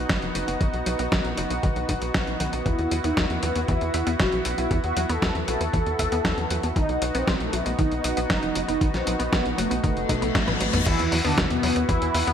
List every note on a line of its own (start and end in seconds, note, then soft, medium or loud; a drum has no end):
0.00 6.72 B3 medium
0.00 2.62 D#4 medium
0.00 6.72 F#4 medium
0.09 0.19 F#1 medium
0.09 0.22 D#3 medium
0.09 kick loud
0.09 snare loud
0.09 closed hi-hat soft
0.22 0.32 F#1 medium
0.22 closed hi-hat soft
0.35 0.44 F#1 medium
0.35 0.41 F#3 medium
0.35 closed hi-hat medium
0.48 0.57 F#1 medium
0.48 0.54 B3 medium
0.48 closed hi-hat soft
0.61 0.70 B1 medium
0.61 0.73 D#3 medium
0.61 kick loud
0.61 closed hi-hat soft
0.74 0.83 B1 medium
0.74 closed hi-hat soft
0.86 0.96 B1 medium
0.86 0.97 F#3 medium
0.86 closed hi-hat medium
0.99 1.08 B1 medium
0.99 1.06 B3 loud
0.99 closed hi-hat soft
1.12 1.21 B1 loud
1.12 1.24 D#3 medium
1.12 kick loud
1.12 snare loud
1.12 closed hi-hat soft
1.25 1.34 B1 medium
1.25 closed hi-hat soft
1.37 1.47 F#1 medium
1.37 1.44 F#3 medium
1.37 closed hi-hat medium
1.50 1.60 B1 medium
1.50 1.61 B3 medium
1.50 closed hi-hat soft
1.63 1.72 B1 loud
1.63 1.74 D#3 loud
1.63 kick loud
1.63 closed hi-hat soft
1.76 1.85 B1 medium
1.76 closed hi-hat soft
1.89 1.98 B1 loud
1.89 1.99 D#3 medium
1.89 kick medium
1.89 closed hi-hat medium
2.02 2.11 B1 medium
2.02 2.14 B3 medium
2.02 closed hi-hat soft
2.14 2.24 B1 loud
2.14 2.25 D#3 medium
2.14 kick loud
2.14 snare loud
2.14 closed hi-hat soft
2.27 2.37 B1 medium
2.27 closed hi-hat soft
2.40 2.49 B1 medium
2.40 2.46 D#3 loud
2.40 closed hi-hat medium
2.53 2.62 B1 medium
2.53 2.63 D#4 medium
2.53 closed hi-hat soft
2.66 2.75 E2 loud
2.66 2.78 E3 medium
2.66 2.96 E4 loud
2.66 6.72 E4 medium
2.66 kick loud
2.66 closed hi-hat soft
2.79 2.88 E2 medium
2.79 closed hi-hat soft
2.91 3.01 E2 medium
2.91 3.02 F#3 medium
2.91 closed hi-hat medium
3.04 3.14 E2 medium
3.04 3.10 B3 loud
3.04 3.25 D#4 medium
3.04 closed hi-hat soft
3.17 3.26 E2 loud
3.17 3.29 E3 medium
3.17 kick loud
3.17 snare loud
3.17 closed hi-hat soft
3.30 3.39 E2 medium
3.30 3.60 B3 medium
3.30 closed hi-hat soft
3.43 3.52 E2 medium
3.43 3.49 F#3 medium
3.43 closed hi-hat medium
3.55 3.65 E2 medium
3.55 3.66 B3 medium
3.55 closed hi-hat soft
3.68 3.78 E2 loud
3.68 3.79 E3 loud
3.68 4.09 E4 loud
3.68 kick loud
3.68 closed hi-hat soft
3.81 3.91 E2 medium
3.81 closed hi-hat soft
3.94 4.03 E2 medium
3.94 4.04 E5 medium
3.94 closed hi-hat medium
4.07 4.16 E2 medium
4.07 4.13 B3 loud
4.07 closed hi-hat soft
4.20 4.29 E1 loud
4.20 4.32 E3 medium
4.20 4.50 F#4 medium
4.20 kick loud
4.20 snare loud
4.20 closed hi-hat soft
4.32 4.42 B1 medium
4.32 closed hi-hat soft
4.45 4.55 B1 medium
4.45 4.52 F#3 medium
4.45 closed hi-hat medium
4.58 4.67 B1 medium
4.58 4.64 B3 medium
4.58 4.78 E4 medium
4.58 closed hi-hat soft
4.71 4.80 E2 loud
4.71 4.83 E3 medium
4.71 kick loud
4.71 closed hi-hat soft
4.84 4.93 E2 medium
4.84 5.04 F#4 medium
4.84 closed hi-hat soft
4.97 5.06 E2 medium
4.97 5.07 F#3 medium
4.97 closed hi-hat medium
5.09 5.19 E2 medium
5.09 5.16 B3 loud
5.09 5.40 A4 medium
5.09 closed hi-hat soft
5.22 5.31 E2 loud
5.22 5.34 E3 medium
5.22 kick loud
5.22 snare loud
5.22 closed hi-hat soft
5.35 5.44 E2 medium
5.35 closed hi-hat soft
5.48 5.57 B1 medium
5.48 5.54 F#3 medium
5.48 6.66 A4 loud
5.48 closed hi-hat medium
5.61 5.70 E2 medium
5.61 5.71 B3 medium
5.61 closed hi-hat soft
5.73 5.83 E2 medium
5.73 5.84 E3 medium
5.73 kick loud
5.73 closed hi-hat soft
5.86 5.96 E2 medium
5.86 closed hi-hat soft
5.99 6.08 E2 loud
5.99 6.10 E5 medium
5.99 kick medium
5.99 closed hi-hat medium
6.12 6.21 E2 medium
6.12 6.18 B3 loud
6.12 closed hi-hat medium
6.25 6.34 E2 loud
6.25 6.37 E3 medium
6.25 kick loud
6.25 snare loud
6.25 closed hi-hat soft
6.38 6.47 E2 medium
6.38 closed hi-hat soft
6.51 6.60 E2 medium
6.51 6.57 F#3 medium
6.51 closed hi-hat medium
6.63 6.72 E2 medium
6.63 6.70 B3 medium
6.63 closed hi-hat soft
6.76 6.85 B1 loud
6.76 6.88 D#3 medium
6.76 10.82 B3 medium
6.76 10.82 D#4 medium
6.76 7.07 D#4 loud
6.76 10.82 F#4 medium
6.76 kick loud
6.76 closed hi-hat soft
6.89 6.98 B1 medium
6.89 closed hi-hat soft
7.02 7.11 B1 loud
7.02 7.12 F#3 medium
7.02 closed hi-hat medium
7.14 7.24 B1 medium
7.14 7.21 B3 loud
7.14 7.35 C4 medium
7.14 closed hi-hat medium
7.27 7.37 B1 loud
7.27 7.40 D#3 medium
7.27 kick loud
7.27 snare loud
7.27 closed hi-hat soft
7.40 7.49 B1 medium
7.40 7.71 A3 loud
7.40 closed hi-hat soft
7.53 7.62 B1 medium
7.53 7.59 F#3 medium
7.53 closed hi-hat medium
7.66 7.75 B1 medium
7.66 7.76 B3 medium
7.66 closed hi-hat medium
7.79 7.88 B1 loud
7.79 7.89 D#3 loud
7.79 8.19 D#4 loud
7.79 kick loud
7.79 closed hi-hat medium
7.92 8.01 B1 medium
7.92 closed hi-hat soft
8.04 8.14 B1 medium
8.04 8.15 D#5 medium
8.04 closed hi-hat medium
8.17 8.26 B1 medium
8.17 8.23 B3 loud
8.17 closed hi-hat medium
8.30 8.39 F#1 loud
8.30 8.42 D#3 medium
8.30 8.60 D#4 loud
8.30 kick loud
8.30 snare loud
8.30 closed hi-hat soft
8.43 8.52 F#1 medium
8.43 closed hi-hat soft
8.55 8.65 F#1 loud
8.55 8.62 F#3 medium
8.55 closed hi-hat medium
8.68 8.78 F#1 medium
8.68 8.75 B3 medium
8.68 8.89 D#4 medium
8.68 closed hi-hat medium
8.81 8.90 B1 medium
8.81 8.93 D#3 medium
8.81 kick loud
8.81 closed hi-hat medium
8.94 9.03 B1 medium
8.94 9.15 C4 medium
8.94 snare soft
8.94 closed hi-hat soft
9.07 9.16 B1 medium
9.07 9.17 F#3 medium
9.07 closed hi-hat medium
9.19 9.29 B1 medium
9.19 9.26 B3 loud
9.19 9.50 B3 loud
9.19 closed hi-hat medium
9.32 9.42 B1 loud
9.32 9.45 D#3 medium
9.32 kick loud
9.32 snare loud
9.32 closed hi-hat medium
9.46 9.55 B1 medium
9.46 closed hi-hat soft
9.58 9.68 F#1 medium
9.58 9.64 F#3 medium
9.58 10.76 A3 loud
9.58 closed hi-hat medium
9.71 9.80 B1 medium
9.71 9.81 B3 medium
9.71 closed hi-hat medium
9.83 9.93 F#1 loud
9.83 9.94 D#3 loud
9.83 kick loud
9.83 closed hi-hat medium
9.83 reverse cymbal medium
9.97 10.06 F#1 medium
9.97 closed hi-hat soft
10.09 10.19 B1 medium
10.09 10.20 D#4 medium
10.09 kick medium
10.09 closed hi-hat medium
10.09 high tom medium
10.22 10.32 B1 medium
10.22 10.28 B3 medium
10.22 closed hi-hat medium
10.35 10.44 A1 loud
10.35 10.47 F#4 medium
10.35 kick loud
10.35 snare loud
10.35 closed hi-hat medium
10.35 mid tom medium
10.48 10.57 A1 medium
10.48 10.60 B4 medium
10.48 closed hi-hat soft
10.48 mid tom medium
10.60 10.70 A1 medium
10.60 10.67 F#3 medium
10.60 closed hi-hat medium
10.73 10.83 A1 medium
10.73 10.84 B3 medium
10.73 closed hi-hat medium
10.73 mid tom medium
10.86 10.95 E2 loud
10.86 10.98 E3 medium
10.86 11.17 E3 medium
10.86 12.33 B3 medium
10.86 12.33 E4 medium
10.86 11.17 E4 loud
10.86 12.33 F#4 medium
10.86 kick loud
10.86 closed hi-hat medium
10.86 crash loud
10.99 11.08 E2 medium
10.99 closed hi-hat soft
11.12 11.21 E2 loud
11.12 11.22 F#3 medium
11.12 open hi-hat loud
11.24 11.34 E2 medium
11.24 11.45 D3 medium
11.24 11.31 B3 loud
11.24 11.45 D4 medium
11.24 open hi-hat medium
11.37 11.47 E2 loud
11.37 11.50 E3 medium
11.37 kick loud
11.37 snare loud
11.37 closed hi-hat medium
11.50 11.60 E2 medium
11.50 11.81 B2 medium
11.50 11.81 B3 loud
11.50 closed hi-hat soft
11.63 11.72 E2 medium
11.63 11.70 F#3 medium
11.63 open hi-hat loud
11.76 11.85 E2 medium
11.76 11.87 B3 medium
11.76 closed hi-hat soft
11.89 11.98 E2 loud
11.89 11.99 E3 medium
11.89 12.29 E3 medium
11.89 12.30 E4 loud
11.89 kick loud
11.89 closed hi-hat medium
12.02 12.11 E2 medium
12.02 closed hi-hat soft
12.14 12.24 E2 loud
12.14 12.25 E5 medium
12.14 open hi-hat loud
12.27 12.33 E2 medium
12.27 12.33 B3 loud
12.27 closed hi-hat soft